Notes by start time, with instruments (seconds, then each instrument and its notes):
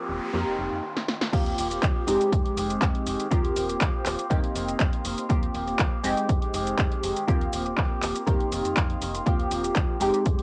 Already playing: clean electric guitar F3 A#3 C4 G4, analog polysynth A#3 C4 F4 G4, noise sweep
0.09 fm bass D#1
0.33 fm bass F2, clean electric guitar D#3 A#3 C4, analog polysynth A#3 C4 D#4 G4
0.37 clean electric guitar F4
0.47 fm bass F1
0.59 fm bass F1
0.72 fm bass F2
0.97 snare
1.08 snare
1.21 snare
1.32 fm bass D#2, clean electric guitar F3 A#3 C4 G4, analog polysynth A#3 C4 F4 G4, kick, closed hi-hat, crash, shaker
1.46 closed hi-hat
1.57 fm bass D#1, clean electric guitar F3 A#3 C4 G4, open hi-hat, shaker
1.70 clean electric guitar A#3 C4 G4, closed hi-hat, shaker
1.83 fm bass D#2, clean electric guitar G4, kick, clap, closed hi-hat, shaker
2.07 fm bass F1, clean electric guitar D#3 G#3 C4 G4, analog polysynth G#3 C4 D#4 G4, open hi-hat, shaker
2.20 clean electric guitar G#3 C4 G4, closed hi-hat, shaker
2.32 fm bass F2, kick, closed hi-hat, shaker
2.44 fm bass F1, clean electric guitar G#3 C4 G4, closed hi-hat
2.56 fm bass F1, clean electric guitar D#3 G#3 C4 G4, open hi-hat, shaker
2.70 closed hi-hat, shaker
2.81 fm bass F2, clean electric guitar D#3 C4 G4, kick, clap, closed hi-hat, shaker
2.95 closed hi-hat
3.06 fm bass F1, clean electric guitar D#3 G#3 C4 G4, open hi-hat, shaker
3.20 closed hi-hat, shaker
3.31 fm bass D#2, clean electric guitar F3 A#3 C4 G4, analog polysynth A#3 C4 F4 G4, kick, closed hi-hat, shaker
3.45 closed hi-hat
3.56 fm bass D#1, clean electric guitar F3 A#3 C4 G4, open hi-hat, shaker
3.69 clean electric guitar A#3 C4 G4, closed hi-hat, shaker
3.81 fm bass D#2, clean electric guitar F3 A#3 C4 G4, kick, clap, closed hi-hat, shaker
4.05 fm bass D#1, clean electric guitar F3 A#3 C4 G4, clap, open hi-hat, shaker
4.18 clean electric guitar A#3 C4 G4, closed hi-hat, shaker
4.30 fm bass F2, analog polysynth A#3 C4 D#4 G4, clean electric guitar A#3 F4, kick, closed hi-hat, shaker
4.43 fm bass F1, clean electric guitar A#3 C4 F4, closed hi-hat
4.55 fm bass F1, clean electric guitar D#3 A#3 C4 F4, open hi-hat, shaker
4.69 closed hi-hat, shaker
4.80 fm bass F2, clean electric guitar D#3 A#3 C4 F4, kick, clap, closed hi-hat, shaker
4.93 closed hi-hat
5.04 fm bass F1, clean electric guitar D#3 A#3 C4 F4, open hi-hat, shaker
5.17 clean electric guitar A#3 C4 F4, closed hi-hat, shaker
5.29 fm bass D#2, clean electric guitar F3 A#3 C4 G4, analog polysynth A#3 C4 F4 G4, kick, closed hi-hat, shaker
5.43 closed hi-hat
5.54 fm bass D#1, clean electric guitar F3 A#3 C4 G4, open hi-hat, shaker
5.67 clean electric guitar A#3 C4 G4, closed hi-hat, shaker
5.79 fm bass D#2, clean electric guitar F3 A#3 C4 G4, kick, clap, closed hi-hat, shaker
6.03 fm bass F1, clean electric guitar D#3 G#3 C4 G4, analog polysynth G#3 C4 D#4 G4, open hi-hat, shaker
6.17 clean electric guitar G#3 C4 G4, closed hi-hat, shaker
6.29 fm bass F2, kick, closed hi-hat, shaker
6.41 fm bass F1, clean electric guitar G#3 C4 G4, closed hi-hat
6.53 fm bass F1, clean electric guitar D#3 G#3 C4 G4, open hi-hat, shaker
6.67 closed hi-hat, shaker
6.79 fm bass F2, kick, clap, closed hi-hat, shaker
6.92 closed hi-hat
7.02 fm bass F1, clean electric guitar D#3 G#3 C4 G4, open hi-hat, shaker
7.16 closed hi-hat, shaker
7.27 fm bass D#2, clean electric guitar F3 A#3 C4 G4, analog polysynth A#3 C4 F4 G4, kick, closed hi-hat, shaker
7.41 closed hi-hat
7.52 fm bass D#1, clean electric guitar F3 A#3 C4 G4, open hi-hat, shaker
7.65 clean electric guitar A#3 C4 G4, closed hi-hat, shaker
7.78 fm bass D#2, clean electric guitar A#3 C4 G4, kick, clap, closed hi-hat, shaker
8.02 fm bass D#1, clean electric guitar F3 A#3 C4 G4, clap, open hi-hat, shaker
8.15 clean electric guitar A#3 C4 G4, closed hi-hat, shaker
8.27 fm bass F2, clean electric guitar D#3 A#3 C4 F4, analog polysynth A#3 C4 D#4 G4, kick, closed hi-hat, shaker
8.40 fm bass F1, clean electric guitar A#3 C4 F4, closed hi-hat
8.51 fm bass F1, clean electric guitar D#3 A#3 C4 F4, open hi-hat, shaker
8.65 fm bass F2, closed hi-hat, shaker
8.77 fm bass F2, clean electric guitar D#3 A#3 C4 F4, kick, clap, closed hi-hat, shaker
8.90 closed hi-hat
9.01 fm bass F1, clean electric guitar D#3 A#3 C4 F4, open hi-hat, shaker
9.14 clean electric guitar A#3 C4 F4, closed hi-hat, shaker
9.26 fm bass D#2, clean electric guitar F3 A#3 C4 G4, analog polysynth A#3 C4 F4 G4, kick, closed hi-hat, shaker
9.40 closed hi-hat
9.51 fm bass D#1, clean electric guitar F3 A#3 C4 G4, open hi-hat, shaker
9.64 clean electric guitar A#3 C4 G4, closed hi-hat, shaker
9.76 fm bass D#2, clean electric guitar F3 G4, kick, clap, closed hi-hat, shaker
10.00 fm bass F1, clean electric guitar D#3 G#3 C4 G4, analog polysynth G#3 C4 D#4 G4, open hi-hat, shaker
10.13 clean electric guitar G#3 C4 G4, closed hi-hat, shaker
10.26 fm bass F2, kick, closed hi-hat, shaker
10.38 fm bass F1, clean electric guitar G4, closed hi-hat